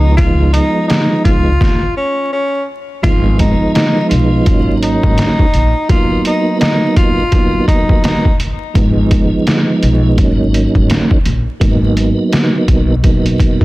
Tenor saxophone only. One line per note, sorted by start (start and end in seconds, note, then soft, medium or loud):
0.00 0.14 D#4 loud
0.17 0.50 F4 medium
0.53 0.86 D#4 medium
0.88 1.21 D#4 medium
1.25 1.92 F4 medium
1.97 2.29 C#4 medium
2.33 2.65 C#4 medium
3.03 3.36 F4 loud
3.40 3.72 D#4 medium
3.74 4.07 D#4 medium
4.09 4.78 F4 medium
4.83 5.86 D#4 loud
5.90 6.22 F4 loud
6.27 6.58 D#4 medium
6.61 6.93 D#4 medium
6.97 7.64 F4 loud
7.68 8.00 D#4 medium
8.04 8.36 D#4 medium